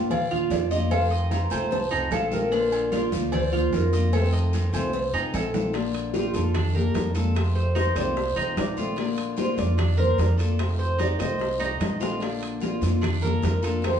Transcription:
Already playing: A#2 A#3 D4 F4
0.10 D5 F5, muted steel-string acoustic guitar stroke, cowbell, high conga, low conga, low agogo, long guiro
0.31 A#3 D4 F4, high conga, low conga
0.50 F2 D5, cowbell, high conga, low timbale, low agogo, short guiro
0.71 A#3 D4 F4 D#5, short guiro
0.91 C3 D#3 A3 C4 F4 A4 F5, cowbell, low agogo, long guiro
1.11 D#5, high conga
1.31 D#3 A3 C4 F4 A#5, cowbell, high conga, low timbale, low agogo, short guiro
1.50 C2 D#3 A3 C4 F4 C5, cowbell, low agogo, short guiro
1.71 A5, muted steel-string acoustic guitar stroke, cowbell, high conga, long guiro
1.91 C2 A3 C4 D#4 F4, high conga, low agogo
2.11 A#1 A4 F5, cowbell, high conga, low timbale, low agogo, short guiro
2.31 D#3 A3 C4 F4 A#4, high conga, short guiro
2.51 D3 A#3 D4 F4, cowbell, high conga, low agogo, long guiro
2.72 cowbell, high conga, low agogo
2.90 D3 A#3 D4 F4 D5, cowbell, high conga, low timbale, short guiro
3.12 D2 A#3 D4 F4, cowbell, high conga, short guiro
3.32 C5 D5, muted steel-string acoustic guitar stroke, cowbell, high conga, low conga, low agogo, long guiro
3.52 A#3 D4 F4, high conga, low conga
3.73 F2 A#4, cowbell, high conga, low timbale, low agogo, short guiro
3.93 A#3 D4 F4 D#5, short guiro
4.13 C3 D#3 A3 C4 F4 A4, cowbell, high conga, low agogo, long guiro
4.33 D#5, high conga
4.53 D#3 A3 C4 F4, cowbell, high conga, low timbale, low agogo, short guiro
4.73 C2 D#3 A3 C4 F4 C5, cowbell, high conga, low agogo, short guiro
4.93 muted steel-string acoustic guitar stroke, cowbell, high conga, long guiro
5.13 C2 A3 C4 D#4 F4, high conga, low agogo
5.34 A#1 A4, cowbell, high conga, high timbale, low agogo, short guiro
5.54 D#3 A3 C4 F4, high conga, low timbale, short guiro
5.73 D3 A#3 D4 F4, high bongo, high timbale, long guiro
5.95 high conga, high timbale
6.13 D3 A#3 D4 F4 G4, high bongo, high conga, low timbale, short guiro
6.33 F2 A#3 D4 F4 A4, high conga, high timbale, short guiro
6.54 D4, muted steel-string acoustic guitar stroke, high bongo, high conga, low conga, high timbale, long guiro
6.74 A#3 D4 F4 G4 A#4, high conga, low conga
6.94 F2 A4, high bongo, low bongo, high conga, high timbale, low timbale, short guiro
7.15 A#3 D4 F4 A4, high conga, high timbale, short guiro
7.35 C3 D#3 A3 C4 F4, high bongo, high conga, high timbale, long guiro
7.55 C5, high bongo, high conga
7.75 D#3 A3 C4 D#4 F4 C5, high bongo, high conga, high timbale, low timbale, short guiro
7.96 C2 D#3 A3 C4 F4 C5 D5, high bongo, high conga, high timbale, short guiro
8.16 muted steel-string acoustic guitar stroke, high bongo, high conga, long guiro
8.36 C2 A3 C4 D#4 F4 C5, high conga, high timbale
8.56 A#1 D5, high bongo, low bongo, high conga, high timbale, low timbale, short guiro
8.77 D#3 A3 C4 F4, high bongo, high conga, short guiro
8.96 D3 A#3 D4 F4, high bongo, high conga, high timbale, long guiro
9.18 high conga, high timbale
9.37 D3 A#3 D4 F4 C5, high bongo, high conga, low timbale, short guiro
9.56 F2 A#3 D4 F4 D5, high conga, high timbale, short guiro
9.78 D4, muted steel-string acoustic guitar stroke, high bongo, high conga, low conga, high timbale, long guiro
9.97 A#3 D4 F4 A#4 C5, high conga, low conga
10.18 F2 D5, high bongo, low bongo, high conga, high timbale, low timbale, short guiro
10.38 A#3 D4 F4 A4, high timbale, short guiro
10.59 C3 D#3 A3 C4 F4, high bongo, high conga, high timbale, long guiro
10.79 C5, high bongo, high conga
10.98 D#3 A3 C4 D#4 F4 D5, high bongo, high conga, high timbale, low timbale, short guiro
11.19 C2 D#3 A3 C4 F4 C5 D#5, high conga, high timbale, short guiro
11.39 muted steel-string acoustic guitar stroke, high bongo, high conga, long guiro
11.58 A3 C4 D#4 F4 D5, high conga, high timbale
11.80 A#1 D#5, high bongo, low bongo, high conga, high timbale, low timbale, short guiro
12.00 D#3 A3 C4 F4, high bongo, high conga, short guiro
12.20 D3 A#3 D4 F4, high bongo, high conga, high timbale, long guiro
12.42 high conga, high timbale
12.60 D3 A#3 D4 F4, high bongo, high conga, low timbale, short guiro
12.81 F2 A#3 D4 F4, high conga, high timbale, short guiro
13.01 D4, muted steel-string acoustic guitar stroke, high bongo, high conga, low conga, high timbale, long guiro
13.22 A#3 D4 F4 A4 A#4, high conga, low conga
13.43 F2 A#4, high bongo, low bongo, high conga, high timbale, low timbale, short guiro
13.62 A#3 D4 F4 A4, high timbale, short guiro
13.82 C3 D#3 A3 C4 F4 C5, high bongo, high conga, high timbale, long guiro

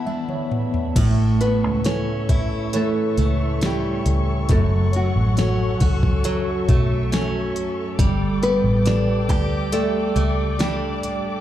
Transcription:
Already playing: E2 E3 A3 B3 E4 E5 F#5 A5 B5
0.06 E3 D4 E5, high tom
0.29 C#5, mid tom
0.52 B3, mid tom
0.74 floor tom
0.96 A1 A2 A3 A4 C#5 E5 C#6, kick, closed hi-hat, crash
1.41 B3 B4, closed hi-hat
1.64 C#2
1.84 C#4 E4 A4 C#5, snare, closed hi-hat
2.29 E2 E4, kick, closed hi-hat
2.73 E3 A3 E4 A4 C#5, closed hi-hat
3.17 C#2 A3, closed hi-hat
3.61 G3 C#4 G4, snare, closed hi-hat
4.06 C#2, closed hi-hat
4.48 F#1 F#2 F#3 A3 A4 F#5, kick, closed hi-hat
4.93 F#3 F#4, closed hi-hat
5.16 A1
5.37 C#4 F#4 A4 C#5, snare, closed hi-hat
5.80 C#2 F#4, kick, closed hi-hat
6.03 kick
6.24 F#3 F#4 A4 C#5 E5, closed hi-hat
6.69 B1 A3, kick, closed hi-hat
7.12 C#4, snare, closed hi-hat
7.56 closed hi-hat
7.98 G1 G3 D5 G5 D6, kick, closed hi-hat
8.42 B3 B4, closed hi-hat
8.64 A1
8.85 D4 G4 A4 D5, snare, closed hi-hat
9.29 D2 G4, kick, closed hi-hat
9.72 A3 G4 A4 D5, closed hi-hat
10.16 C#2 A3, closed hi-hat
10.59 G3 D4 G4, snare, closed hi-hat
11.02 A1, closed hi-hat

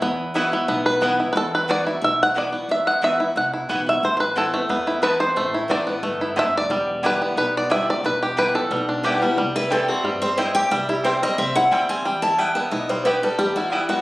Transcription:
Already playing: E4
0.02 E2 B3
0.34 E3 B3 E4 F#4 B4 F#5
0.52 B3 E4 F#4
0.68 B1 B2 B3
0.86 B4
1.01 E3 B3 E4 F#4 B4 F#5
1.20 E4
1.33 E2 B4
1.37 A4
1.55 B4
1.68 E3 B3 E4 F#4 B4 D5 F#5
1.86 E4 F#4
2.02 B1 B2 E5
2.23 F#5
2.34 E3 B3 E4 F#4 B4 D5 F#5
2.52 B3 E4 F#4
2.68 E2 E5
2.87 F#5
3.02 E3 B3 E4 F#4 B4 E5 F#5
3.19 E4 F#4
3.36 C2 B2 F#5
3.53 E4
3.69 B1 E3 B3 E4 F#4 B4 F#5
3.86 E4 F#4 E5
4.03 A1 A2 C5
4.17 B4 C5
4.35 E3 B3 C4 E4 A4 C5 A5
4.53 A3 B3 E4
4.69 E2 B3
4.87 E4
5.02 E3 B3 C4 E4 B4 C5 A5
5.20 C5
5.36 A1 A2 A3
5.54 E4
5.68 A1 E3 B3 C4 E4 C5 D5 A5
5.87 B3 E4
6.03 G1 G2 A3
6.21 E4
6.36 F#1 F#2 B3 E4 C5 E5 A5
6.57 D5
6.70 E1 E2 G3
7.03 D3 G3 B3 E4 B4 D5 G5
7.22 B3
7.36 B1 B2 B4
7.57 D5
7.70 D3 G3 B3 E4 D5 E5 G5
7.90 D5
8.04 E1 E2 B4
8.23 G4
8.37 D3 G3 B3 E4 B4 D5 G5
8.54 B3 E4 A4
8.70 B1 B2 G3
8.89 D4
9.03 D3 G3 B3 E4 G4 D5 G5
9.22 G3 B3 E4
9.37 C2 G3
9.56 E4 B4
9.70 E3 C4 E4 A4 C5 G5
9.88 C4 F#4
10.04 G2 G3 G4
10.22 C4 C5
10.37 C4 E4 C5 D#5 G5
10.55 G4 G5
10.71 C2 G3 E5
10.89 E4 G4
11.04 C4 E4 C5 G5
11.23 G3 D#5
11.38 C2 C4 E5
11.55 E4 F#5
11.71 D#2 G3 C4 E4 C5 G5
11.89 C4 G#5
12.05 E2 G3 G5
12.22 E4 A5
12.38 G3 B3 E4 B4 G5
12.55 B3 E5
12.71 B1 E4 D#5
12.89 G3 C5
13.05 B3 E4 G4 B4 G5
13.23 G3 A4
13.39 E2 G3 G4
13.56 E4 F#4
13.72 G3 B3 E4 B4 G5
13.89 B3 F#4

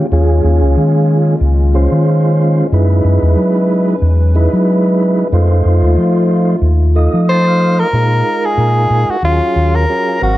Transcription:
Already playing: D#3 G#3 A#3 C#4 F4
0.12 D#2 G#3 C#4 F4 G#4
0.44 D#2
0.62 C#2
0.77 D#3
1.41 C#2
1.74 G#3 C#4 F4 C5
1.92 D#3
2.72 F#2 F#3 G#3 D#4 E4 B4
3.04 F#2
3.22 E2
3.36 F#3
4.02 E2
4.35 G#3 D#4 E4 B4
4.53 F#3
5.32 F2 A3 D#4 F4 C5
5.65 F2
5.83 D#2
5.97 F3
6.62 D#2
6.95 A3 D#4 F4 D#5
7.14 F3
7.29 C5 A5
7.47 F5
7.79 A#4
7.93 A#2 G#3 D#4 F4 A#4
8.46 G#4
8.58 A#2
8.90 A#2
9.09 F#4, muted fingered electric bass stroke
9.23 D#2 F#3 C#4 F4 G#4
9.56 D#2
9.76 A#4
9.89 F#3 C#4 F4 G#4
10.21 G#1 F#3 C4 F#4 A#4 F5

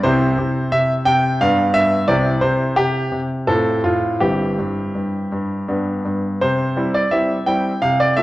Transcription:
0.03 C2 C3 C4 E4 C5
0.38 C3
0.72 C3 E5
1.05 C3 G5
1.40 G2 B3 D4 F5
1.74 G2 E5
2.07 C2 C3 C4 E4 D5
2.41 C3 C5
2.76 C3 G4
3.12 C3
3.47 A2 C4 F4 A4
3.84 A2 F4
4.20 G1 G2 C4 E4 G4
4.59 G2
4.95 G2
5.32 G2
5.68 G2 B3 D4
6.05 G2
6.42 C3 C5
6.77 G3 C4 E4
6.95 D5
7.11 G3 C4 E4 E5
7.46 G3 C4 E4 G5
7.82 C3 F5
8.00 D5
8.17 A3 D4 F4 E5

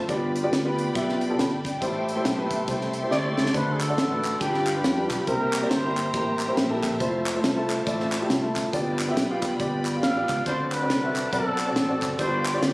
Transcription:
0.08 G1 G2 G3 B3 D4 F4 G4 A#4 D5 G5 B5, kick, closed hi-hat
0.13 B4
0.36 closed hi-hat
0.43 B3 F4 G4 D5
0.51 D2, snare, closed hi-hat
0.64 B3 F4 G4 B4
0.79 closed hi-hat
0.94 B1 B3 F4 G4 E5, kick, closed hi-hat
1.09 snare
1.21 F4 D5, closed hi-hat
1.29 B3 F4 G4 A4
1.38 G1 A4 F5 B5, snare, closed hi-hat
1.64 F4 D5 G5, kick, snare, closed hi-hat
1.81 A1 A2 A3 E4 G4 C5 E5 A5 C6, kick, closed hi-hat
2.09 closed hi-hat
2.15 A3 E4 G4 C5
2.25 B1, snare, closed hi-hat
2.37 A3 E4 G4 B4
2.51 kick, closed hi-hat
2.67 C2 A3 E4 G4 C5, kick, closed hi-hat
2.81 snare
2.93 closed hi-hat
3.02 A3 E4 G4 C5
3.11 D2 D5, snare
3.23 A3 E4 G4 C5
3.37 C#2, snare
3.46 snare
3.53 D2 D3 A3 D4 F#4 B4 C5 D5 F#5 A5, kick, closed hi-hat
3.72 G#4
3.80 A4, clap, closed hi-hat
3.88 A3 D4 F#4 D5
3.97 A1, snare, closed hi-hat
4.09 A3 D4 F#4 B4
4.24 clap, closed hi-hat
4.40 G1 G2 G3 D4 F4 G4 B4 F5 G5 B5, kick, closed hi-hat
4.54 snare
4.66 clap, closed hi-hat
4.75 G3 D4 F4 B4
4.84 F2, snare, closed hi-hat
4.96 G3 D4 F4 B4
5.10 B1 G4, kick, snare, clap, closed hi-hat
5.27 C2 C3 G3 A#3 C4 E4 G4 A#4 C5 E5 G5 A#5, kick, closed hi-hat
5.53 clap, closed hi-hat
5.61 A#3 E4 G4 D5
5.71 G1 C5, snare, closed hi-hat
5.83 A#3 E4 G4 C5
5.97 clap, closed hi-hat
6.13 A1 A#3 E4 G4 C5, kick, closed hi-hat
6.39 G5, clap, closed hi-hat
6.47 A#3 E4 G4 C5
6.56 A#1 E5, snare, closed hi-hat
6.69 A#3 E4 G4 A4
6.83 A#1, kick, snare, clap, closed hi-hat
6.99 F1 F3 A3 C4 E4 F4 A4 C5 A5, kick, closed hi-hat
7.26 clap, closed hi-hat
7.34 A3 E4 F4 C5
7.44 C2, snare, closed hi-hat
7.55 A3 E4 F4 A4
7.70 clap, closed hi-hat
7.86 A1 A3 E4 F4 D5, kick, closed hi-hat
8.00 snare
8.12 clap, closed hi-hat
8.20 A3 E4 F4 G4
8.29 C2 E4 C5, snare, closed hi-hat
8.42 A3 E4 F4 A4
8.56 C4 A4, kick, snare, clap, closed hi-hat
8.72 G1 G2 F3 A#3 B3 D4 F4 G4 D5 G5 B5, kick, closed hi-hat
8.78 B3
8.99 clap, closed hi-hat
9.08 B3 F4 G4 E5
9.16 B1, snare, closed hi-hat
9.30 B3 F4 G4 F5
9.42 kick, clap, closed hi-hat
9.59 G1 B3 F4 G4 D5, kick, closed hi-hat
9.85 clap, closed hi-hat
9.95 B3 F4 G4 F5
10.03 A1 F5, snare, closed hi-hat
10.15 B3 F4 G4 D5
10.29 C#2, kick, snare, clap, closed hi-hat
10.46 D2 D3 F#3 C4 D4 F#4 A4 C5 D5 F#5 A5, kick, closed hi-hat
10.72 B4, clap, closed hi-hat
10.81 C4 F#4 A4 D5
10.89 C2, snare, closed hi-hat
11.02 C4 F#4 A4 E5
11.15 clap, closed hi-hat
11.32 B1 C4 F#4 A4 D5, kick, closed hi-hat
11.58 clap, closed hi-hat
11.67 C4 F#4 A4 D5
11.76 A1, snare, closed hi-hat
11.88 C4 F#4 A4 D5
12.02 F#1, kick, snare, clap, closed hi-hat
12.18 G1 G2 G3 B3 D4 F4 G4 A4 C5 D5 F5 G5 B5, kick, closed hi-hat
12.23 D5
12.45 clap, closed hi-hat
12.53 B3 F4 G4 C#5 D5
12.61 D2 D5, snare, closed hi-hat

